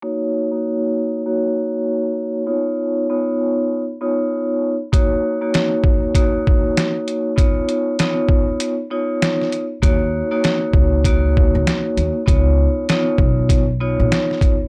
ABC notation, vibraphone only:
X:1
M:4/4
L:1/16
Q:"Swing 16ths" 1/4=98
K:Ebm
V:1 name="Vibraphone"
[B,EGd]3 [B,EGd]4- [B,EGd] [B,EGd]6- [B,EGd] z | [CEFd]4 [CEFd]4- [CEFd] z [CEFd]4- [CEFd] z | [B,EGd]3 [B,EGd]4- [B,EGd] [B,EGd]6- [B,EGd] z | [CEFd]4 [CEFd]4- [CEFd] z [CEFd]4- [CEFd] z |
[B,EGd]3 [B,EGd]4- [B,EGd] [B,EGd]6- [B,EGd] z | [CEFd]4 [CEFd]4- [CEFd] z [CEFd]4- [CEFd] z |]